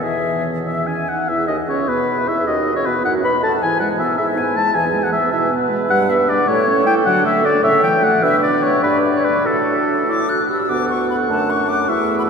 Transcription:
0.03 1.08 E2 soft
0.03 1.06 E3 soft
0.03 0.61 B3 soft
0.03 0.49 G#4 soft
0.03 0.43 E5 medium
0.66 0.86 B3 soft
0.66 0.88 E5 soft
0.66 0.86 E5 soft
0.87 0.96 C#4 soft
0.87 1.10 G#5 soft
1.08 1.28 D#4 soft
1.08 1.30 F#5 soft
1.28 1.47 E2 soft
1.28 1.50 E4 medium
1.28 2.43 G#4 soft
1.28 1.50 E5 medium
1.28 1.47 E5 medium
1.48 1.57 D#2 soft
1.48 1.68 D#4 soft
1.48 1.57 D#5 soft
1.48 1.69 D#5 soft
1.68 1.90 C#2 soft
1.68 1.90 C#4 soft
1.68 1.88 C#5 soft
1.68 1.90 C#5 medium
1.88 2.29 B2 soft
1.88 2.29 B3 soft
1.88 2.30 B4 medium
1.88 2.27 B4 soft
2.28 2.48 E2 soft
2.28 2.47 E4 medium
2.28 2.47 E5 soft
2.28 2.46 E5 medium
2.47 2.76 D#2 medium
2.47 2.75 D#4 soft
2.47 3.06 F#4 soft
2.47 2.75 D#5 medium
2.47 2.78 D#5 medium
2.76 2.86 C#2 soft
2.76 2.88 C#4 soft
2.76 2.87 C#5 soft
2.76 2.86 C#5 soft
2.86 2.95 B2 soft
2.86 3.07 B3 soft
2.86 3.04 B4 medium
2.86 2.93 B4 soft
3.05 3.26 F#2 medium
3.05 3.62 D#4 soft
3.05 3.24 F#4 medium
3.05 3.13 F#5 medium
3.05 3.11 F#5 medium
3.24 3.45 B2 medium
3.24 3.33 B4 medium
3.24 3.43 B5 medium
3.24 3.31 B5 soft
3.43 3.61 A2 medium
3.43 3.51 A4 medium
3.43 3.64 A5 medium
3.43 3.52 A5 medium
3.62 4.09 G#2 soft
3.62 3.82 E3 soft
3.62 4.77 E4 medium
3.62 3.82 G#5 medium
3.62 3.80 G#5 medium
3.80 4.01 G#3 soft
3.80 3.89 F#5 medium
3.80 3.99 F#5 medium
3.99 4.19 B3 soft
3.99 4.17 E5 medium
3.99 4.06 E5 soft
4.18 4.65 G#2 medium
4.18 4.39 E4 soft
4.18 4.26 E5 medium
4.18 4.39 E5 medium
4.37 4.58 B3 soft
4.37 4.58 G#5 medium
4.37 4.56 G#5 medium
4.56 4.74 G#3 soft
4.56 4.76 A5 medium
4.56 4.74 A5 medium
4.75 5.22 E2 medium
4.75 4.95 E3 soft
4.75 5.31 G#4 medium
4.75 5.05 G#5 medium
4.75 5.03 G#5 medium
4.94 5.14 G#3 soft
5.03 5.12 F#5 medium
5.03 5.08 F#5 medium
5.12 5.34 B3 soft
5.12 5.31 E5 medium
5.12 5.32 E5 soft
5.31 5.80 B2 medium
5.31 5.52 E4 soft
5.31 6.46 B4 medium
5.31 5.50 E5 medium
5.31 5.38 E5 medium
5.51 5.71 B3 medium
5.70 5.89 G#3 soft
5.89 6.38 G2 medium
5.89 6.11 G3 medium
5.89 6.11 F#5 medium
5.89 5.99 F#5 medium
6.09 6.30 B3 soft
6.09 6.31 E5 medium
6.09 6.30 E5 medium
6.28 6.47 D4 medium
6.28 6.47 D5 medium
6.28 6.50 D5 medium
6.48 6.96 A2 medium
6.48 6.69 A3 medium
6.48 7.65 A4 medium
6.48 6.85 C#5 medium
6.48 6.86 C#5 medium
6.67 6.88 C#4 medium
6.86 7.05 E4 soft
6.86 6.92 G5 medium
6.86 6.95 G5 medium
7.06 7.54 D3 medium
7.06 7.26 F#3 medium
7.06 7.24 F#5 medium
7.06 7.25 F#5 medium
7.25 7.46 A3 medium
7.25 7.44 E5 medium
7.25 7.47 E5 medium
7.44 7.63 D4 medium
7.44 7.65 D5 medium
7.44 7.63 D5 medium
7.63 8.13 A2 medium
7.63 7.84 C#3 soft
7.63 8.02 C#5 medium
7.63 7.82 E5 medium
7.63 7.83 E5 medium
7.83 8.04 E3 medium
7.83 7.89 G5 medium
7.83 8.05 G5 medium
8.03 8.21 A3 medium
8.03 8.22 F#5 medium
8.03 8.25 F#5 medium
8.22 8.79 B2 medium
8.22 8.79 D4 medium
8.22 8.79 B4 medium
8.22 8.41 E5 medium
8.22 8.42 E5 medium
8.41 8.65 D5 medium
8.63 8.83 C#5 medium
8.63 8.84 C#5 medium
8.82 9.47 G2 medium
8.82 9.28 D4 soft
8.82 9.15 B4 medium
8.82 8.97 B4 medium
8.82 9.44 D5 medium
9.13 9.26 C#5 soft
9.13 9.26 C#5 medium
9.24 9.45 B4 soft
9.24 9.48 B4 medium
9.45 10.49 A2 soft
9.45 10.06 D4 soft
9.45 10.37 F#4 soft
9.45 9.80 A4 medium
9.45 10.50 A4 medium
10.07 10.27 E4 soft
10.07 10.31 D6 medium
10.28 10.38 F#4 soft
10.28 10.50 F#6 medium
10.49 10.69 G4 soft
10.49 10.71 E6 medium
10.69 11.26 D2 medium
10.69 11.31 B3 soft
10.69 11.31 F#4 soft
10.69 11.91 F#5 medium
10.69 10.89 D6 medium
10.90 11.09 C#6 medium
11.10 11.16 B5 medium
11.29 11.91 F#2 medium
11.29 11.88 A3 soft
11.29 11.90 D4 soft
11.29 11.52 A5 medium
11.50 11.70 C#6 medium
11.69 11.90 D6 medium
11.88 12.30 E2 medium
11.88 12.30 A3 medium
11.88 12.30 E4 medium
11.88 12.30 E5 medium
11.88 12.18 C#6 medium
12.19 12.23 B5 medium

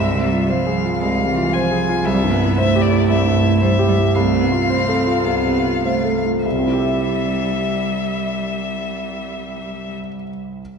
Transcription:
0.00 0.98 C2 soft
0.00 0.25 G#3 soft
0.00 0.52 E5 soft
0.14 0.43 C3 soft
0.23 0.51 G3 soft
0.33 0.60 F4 soft
0.49 1.03 F3 soft
0.49 0.77 C5 soft
0.49 1.01 F5 soft
0.67 0.94 G#4 soft
0.85 1.12 F4 soft
1.01 2.03 C2 soft
1.01 1.27 G#3 soft
1.01 1.55 F5 soft
1.20 1.47 C3 soft
1.28 1.56 E3 soft
1.37 1.65 F4 soft
1.53 2.08 F3 soft
1.53 1.82 C5 soft
1.53 2.06 G#5 soft
1.71 1.99 G#4 soft
1.89 2.06 F4 soft
2.05 3.06 C2 soft
2.05 2.34 G3 soft
2.05 2.57 E5 soft
2.24 2.51 G2 soft
2.33 2.61 B3 soft
2.41 2.68 E4 soft
2.57 3.61 A3 soft
2.57 2.85 C5 soft
2.57 2.83 E5 soft
2.76 3.03 G4 soft
2.82 3.08 D5 soft
2.91 3.19 E4 soft
3.08 4.11 C2 soft
3.08 3.60 E5 soft
3.26 3.54 G2 soft
3.44 3.72 E4 soft
3.61 3.70 G3 soft
3.61 3.90 C5 soft
3.61 4.16 E5 soft
3.79 4.07 G4 soft
3.88 3.96 G3 soft
3.98 4.15 E4 soft
4.14 5.23 C2 soft
4.14 4.40 A3 soft
4.14 5.84 F5 soft
4.33 4.62 C3 soft
4.40 4.48 B3 soft
4.52 4.81 F4 soft
4.68 5.26 C4 soft
4.68 5.00 C5 soft
4.89 5.19 A4 soft
5.07 5.37 F4 soft
5.24 6.41 C2 soft
5.24 5.84 B3 soft
5.46 5.77 C3 soft
5.66 5.97 F4 soft
5.84 6.21 A3 soft
5.84 6.17 C5 soft
5.84 6.22 F5 soft
6.05 6.37 A4 soft
6.25 6.45 F4 soft
6.44 9.93 C2 soft
6.44 9.92 G3 soft
6.44 9.93 E5 soft
6.52 10.00 C3 soft
6.59 10.07 C4 soft
6.66 10.14 E4 soft
6.73 10.21 G4 soft
6.80 10.28 E5 soft

